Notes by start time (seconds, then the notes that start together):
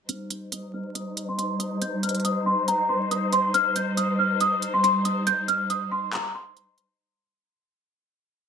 0.09 G3 D#4 C5 F6, closed hi-hat
0.30 closed hi-hat
0.52 D#6, closed hi-hat
0.74 F6
0.95 D#6, closed hi-hat
1.17 closed hi-hat
1.29 C6
1.38 C6, closed hi-hat
1.60 D#6, closed hi-hat
1.82 G6, closed hi-hat
2.03 F6, closed hi-hat
2.09 closed hi-hat
2.15 closed hi-hat
2.20 closed hi-hat
2.25 D#6, closed hi-hat
2.46 C6
2.68 A#5, closed hi-hat
2.89 C6
3.11 D#6, closed hi-hat
3.33 C6, closed hi-hat
3.54 G3 F6, closed hi-hat
3.76 closed hi-hat
3.97 D#6, closed hi-hat
4.19 F6
4.40 D#6, closed hi-hat
4.62 closed hi-hat
4.74 C6
4.84 C6, closed hi-hat
5.05 D#6, closed hi-hat
5.27 G6, closed hi-hat
5.48 F6, closed hi-hat
5.70 D#6, closed hi-hat
5.92 C6
6.13 A#5, clap, closed hi-hat
6.34 C6
6.57 closed hi-hat
6.78 closed hi-hat